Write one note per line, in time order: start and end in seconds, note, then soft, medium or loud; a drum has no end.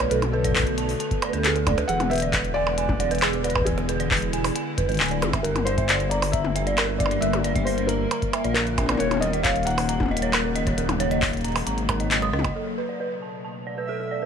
0.00 9.00 D3 medium
0.00 1.89 A3 medium
0.00 5.45 B3 medium
0.00 3.31 F#4 medium
0.00 5.45 B4 medium
0.00 0.04 B4 medium
0.00 closed hi-hat medium
0.00 percussion blips medium
0.10 0.96 B1 loud
0.10 0.18 A4 medium
0.10 0.15 B4 loud
0.10 closed hi-hat medium
0.22 closed hi-hat soft
0.22 high tom medium
0.22 percussion blips soft
0.32 1.26 A4 medium
0.32 0.44 B4 loud
0.44 0.49 D5 loud
0.44 kick medium
0.44 closed hi-hat medium
0.48 kick medium
0.52 kick medium
0.56 0.60 B4 loud
0.56 kick medium
0.56 clap loud
0.56 open hi-hat medium
0.59 kick loud
0.63 kick loud
0.63 closed hi-hat soft
0.78 0.85 A5 medium
0.78 closed hi-hat medium
0.89 open hi-hat medium
1.00 1.07 A5 medium
1.00 closed hi-hat medium
1.11 kick loud
1.11 closed hi-hat soft
1.22 1.33 D5 loud
1.22 closed hi-hat medium
1.22 percussion blips medium
1.29 1.39 B4 medium
1.33 1.84 D2 medium
1.33 1.38 B4 loud
1.33 closed hi-hat medium
1.38 1.48 A4 medium
1.45 1.57 G#4 medium
1.45 1.51 A4 loud
1.45 clap loud
1.45 closed hi-hat medium
1.56 1.63 A4 medium
1.56 1.66 A4 medium
1.56 closed hi-hat soft
1.67 1.74 D5 loud
1.67 kick loud
1.67 closed hi-hat medium
1.67 high tom medium
1.67 percussion blips medium
1.69 kick loud
1.71 kick medium
1.73 kick medium
1.76 1.82 B4 medium
1.76 kick medium
1.76 closed hi-hat medium
1.76 percussion blips medium
1.88 3.62 E1 loud
1.88 1.96 G#4 medium
1.88 2.01 F#5 loud
1.88 closed hi-hat medium
1.93 5.44 G#3 medium
2.00 2.10 F#5 medium
2.00 closed hi-hat soft
2.00 high tom medium
2.00 percussion blips soft
2.10 2.22 B4 loud
2.10 2.56 E5 loud
2.10 closed hi-hat soft
2.13 closed hi-hat soft
2.16 closed hi-hat medium
2.18 closed hi-hat medium
2.20 closed hi-hat medium
2.22 2.27 D5 loud
2.22 closed hi-hat medium
2.33 2.38 B4 loud
2.33 kick loud
2.33 clap loud
2.33 closed hi-hat medium
2.44 closed hi-hat soft
2.54 3.46 D5 loud
2.54 2.63 G#5 medium
2.67 percussion blips medium
2.78 2.85 G#5 medium
2.78 closed hi-hat medium
2.89 9.00 E4 medium
2.89 kick loud
2.89 high tom medium
3.00 3.10 D5 loud
3.00 closed hi-hat medium
3.11 3.15 B4 loud
3.11 closed hi-hat medium
3.15 closed hi-hat soft
3.19 3.29 G#4 loud
3.19 clap loud
3.19 closed hi-hat soft
3.22 closed hi-hat medium
3.22 percussion blips medium
3.30 closed hi-hat soft
3.33 3.40 G#4 medium
3.33 closed hi-hat soft
3.43 3.67 B4 medium
3.43 3.51 D5 loud
3.43 closed hi-hat medium
3.50 closed hi-hat medium
3.56 3.60 B4 medium
3.56 kick loud
3.56 percussion blips medium
3.61 kick medium
3.65 4.51 E1 loud
3.65 4.51 G#4 medium
3.65 3.74 G#4 medium
3.65 kick medium
3.65 closed hi-hat medium
3.72 kick medium
3.78 closed hi-hat soft
3.78 percussion blips soft
3.89 3.99 B4 loud
3.89 closed hi-hat medium
4.00 4.04 D5 loud
4.00 closed hi-hat medium
4.11 4.15 B4 loud
4.11 kick loud
4.11 clap loud
4.17 open hi-hat medium
4.22 closed hi-hat soft
4.33 4.40 G#5 medium
4.33 closed hi-hat medium
4.44 open hi-hat medium
4.44 percussion blips medium
4.56 4.63 G#5 medium
4.56 closed hi-hat medium
4.78 4.85 B4 medium
4.78 kick loud
4.78 closed hi-hat medium
4.80 kick medium
4.82 kick medium
4.84 kick medium
4.87 4.99 G#1 medium
4.87 4.96 B4 medium
4.87 kick soft
4.87 closed hi-hat soft
4.92 closed hi-hat soft
4.94 closed hi-hat soft
4.97 5.10 G#5 medium
4.97 clap loud
4.97 closed hi-hat soft
5.00 5.24 D1 medium
5.00 closed hi-hat soft
5.03 closed hi-hat soft
5.06 closed hi-hat soft
5.08 5.15 D5 medium
5.08 closed hi-hat soft
5.11 closed hi-hat soft
5.22 5.39 G#1 medium
5.22 5.29 G#4 medium
5.22 closed hi-hat medium
5.22 high tom medium
5.22 percussion blips soft
5.33 5.40 E5 medium
5.33 kick loud
5.33 closed hi-hat medium
5.33 percussion blips medium
5.43 7.18 G1 loud
5.43 5.67 A#4 medium
5.43 5.51 A#4 medium
5.43 closed hi-hat medium
5.56 closed hi-hat soft
5.56 high tom medium
5.56 percussion blips soft
5.65 6.07 C5 loud
5.65 5.77 D5 loud
5.65 closed hi-hat medium
5.74 9.00 G3 medium
5.74 12.56 A#3 medium
5.78 5.82 E5 loud
5.78 kick loud
5.78 closed hi-hat medium
5.89 5.93 D5 loud
5.89 clap loud
5.89 closed hi-hat medium
6.00 12.56 A#4 medium
6.00 closed hi-hat soft
6.10 6.33 D5 medium
6.10 6.18 A#5 medium
6.10 closed hi-hat medium
6.22 open hi-hat medium
6.22 percussion blips medium
6.32 7.01 E5 loud
6.32 6.40 A#5 medium
6.32 kick loud
6.32 closed hi-hat medium
6.45 high tom medium
6.56 6.66 E5 loud
6.56 closed hi-hat medium
6.67 6.71 D5 loud
6.67 closed hi-hat medium
6.78 6.85 A#4 loud
6.78 clap loud
6.78 closed hi-hat medium
6.78 percussion blips medium
6.89 6.96 A#4 medium
6.98 7.22 D5 medium
6.98 7.07 E5 loud
6.98 kick loud
6.98 closed hi-hat medium
7.06 percussion blips medium
7.11 7.15 D5 medium
7.11 closed hi-hat medium
7.21 8.07 G1 loud
7.21 7.29 A#4 medium
7.21 7.63 E5 loud
7.21 closed hi-hat medium
7.33 closed hi-hat soft
7.33 high tom medium
7.33 percussion blips soft
7.44 7.55 D5 loud
7.44 closed hi-hat medium
7.56 7.60 E5 loud
7.56 kick loud
7.56 closed hi-hat medium
7.65 7.89 C5 medium
7.65 7.71 D5 loud
7.65 open hi-hat medium
7.78 closed hi-hat soft
7.87 8.53 A#4 loud
7.87 7.96 A#5 medium
7.87 closed hi-hat medium
8.11 8.18 A#5 medium
8.11 closed hi-hat medium
8.11 percussion blips medium
8.22 kick loud
8.22 closed hi-hat soft
8.33 8.44 E5 loud
8.33 closed hi-hat medium
8.33 percussion blips medium
8.44 8.96 A#1 medium
8.44 8.49 D5 loud
8.44 closed hi-hat medium
8.54 9.01 A#4 loud
8.54 8.63 A#4 loud
8.54 clap loud
8.54 closed hi-hat medium
8.67 8.74 A#4 medium
8.67 closed hi-hat soft
8.78 8.85 E5 loud
8.78 kick loud
8.78 closed hi-hat medium
8.78 high tom soft
8.78 percussion blips medium
8.81 high tom soft
8.83 high tom medium
8.86 closed hi-hat soft
8.86 high tom medium
8.89 8.93 D5 medium
8.89 high tom medium
8.89 percussion blips medium
8.92 high tom medium
8.94 high tom medium
8.97 10.73 D#1 loud
8.97 12.56 C#3 medium
8.97 9.07 A#4 medium
8.97 9.22 C#5 loud
8.97 closed hi-hat medium
8.97 high tom medium
9.11 14.26 F#3 medium
9.11 closed hi-hat soft
9.11 high tom medium
9.11 percussion blips soft
9.14 high tom medium
9.17 high tom medium
9.20 9.33 C#5 loud
9.20 9.44 D#5 loud
9.20 closed hi-hat medium
9.20 high tom soft
9.22 high tom soft
9.25 high tom soft
9.28 high tom soft
9.31 9.38 D#5 loud
9.31 closed hi-hat medium
9.31 high tom soft
9.43 9.49 C#5 loud
9.43 9.67 F5 loud
9.43 kick loud
9.43 clap loud
9.43 closed hi-hat medium
9.56 closed hi-hat soft
9.63 12.06 F#5 loud
9.63 closed hi-hat soft
9.67 9.74 A#5 medium
9.67 closed hi-hat medium
9.70 12.56 D#4 medium
9.70 closed hi-hat soft
9.78 open hi-hat medium
9.78 percussion blips medium
9.89 9.96 A#5 medium
9.89 closed hi-hat medium
10.00 kick loud
10.00 high tom loud
10.03 high tom medium
10.06 high tom medium
10.08 10.22 D#5 loud
10.08 high tom medium
10.17 closed hi-hat medium
10.22 10.26 C#5 loud
10.22 closed hi-hat medium
10.33 10.40 A#4 loud
10.33 clap loud
10.33 closed hi-hat medium
10.33 percussion blips medium
10.45 10.51 A#4 medium
10.56 10.63 D#5 loud
10.56 closed hi-hat medium
10.67 10.71 C#5 medium
10.67 kick loud
10.67 closed hi-hat medium
10.78 11.62 D#1 loud
10.78 10.85 A#4 medium
10.78 closed hi-hat medium
10.89 closed hi-hat soft
10.89 high tom loud
10.89 percussion blips soft
11.00 11.11 C#5 loud
11.00 closed hi-hat medium
11.11 11.15 D#5 loud
11.11 closed hi-hat medium
11.22 11.26 C#5 loud
11.22 kick loud
11.22 clap loud
11.22 open hi-hat medium
11.33 closed hi-hat soft
11.37 closed hi-hat soft
11.41 closed hi-hat soft
11.45 11.51 A#5 medium
11.45 closed hi-hat medium
11.48 closed hi-hat soft
11.52 closed hi-hat soft
11.52 open hi-hat medium
11.52 percussion blips medium
11.67 12.33 G#1 loud
11.67 11.74 A#5 medium
11.67 closed hi-hat medium
11.78 closed hi-hat soft
11.89 11.99 A#4 medium
11.89 kick loud
11.89 closed hi-hat medium
11.89 percussion blips medium
12.00 12.07 D#5 medium
12.00 closed hi-hat medium
12.11 12.18 D#5 medium
12.11 clap loud
12.11 closed hi-hat medium
12.22 12.26 D#6 medium
12.22 cross-stick medium
12.22 closed hi-hat soft
12.24 cross-stick soft
12.27 cross-stick soft
12.29 cross-stick soft
12.31 12.50 C#2 medium
12.31 cross-stick soft
12.33 12.40 D#5 medium
12.33 cross-stick medium
12.39 high tom medium
12.44 12.51 D#5 loud
12.44 kick loud
12.44 closed hi-hat medium
12.44 percussion blips medium
12.56 14.26 B2 medium
12.56 12.63 A4 medium
12.56 14.26 E5 medium
12.78 12.88 B4 medium
12.86 14.26 D4 medium
12.86 12.93 D5 medium
13.00 13.04 B4 medium
13.11 14.26 A3 medium
13.17 14.26 A4 medium
13.22 13.29 A5 medium
13.44 13.51 A5 medium
13.67 13.77 D5 medium
13.78 13.82 B4 medium
13.89 13.96 A4 medium
14.00 14.07 A4 medium
14.11 14.18 D5 medium
14.22 14.26 B4 medium